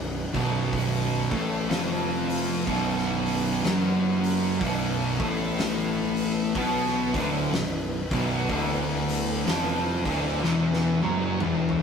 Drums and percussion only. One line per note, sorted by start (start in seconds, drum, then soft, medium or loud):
0.35 kick loud
0.35 open hi-hat medium
0.73 kick loud
0.73 open hi-hat medium
1.31 kick loud
1.31 open hi-hat medium
1.70 snare loud
1.70 open hi-hat medium
2.30 open hi-hat medium
2.67 kick loud
2.67 open hi-hat medium
2.98 snare soft
3.26 open hi-hat medium
3.64 snare loud
3.64 open hi-hat medium
4.24 open hi-hat medium
4.61 kick loud
4.61 open hi-hat medium
5.20 kick loud
5.20 open hi-hat medium
5.58 snare loud
5.58 open hi-hat medium
6.16 open hi-hat medium
6.55 kick loud
6.55 open hi-hat medium
6.86 snare soft
7.14 kick loud
7.14 open hi-hat medium
7.53 snare loud
7.53 open hi-hat medium
8.11 kick loud
8.11 open hi-hat medium
8.49 kick loud
8.49 open hi-hat medium
9.09 open hi-hat medium
9.47 snare loud
9.47 open hi-hat medium
10.05 kick loud
10.05 open hi-hat medium
10.44 snare medium
10.74 snare medium
11.02 high tom medium
11.22 high tom medium
11.40 mid tom medium
11.69 mid tom medium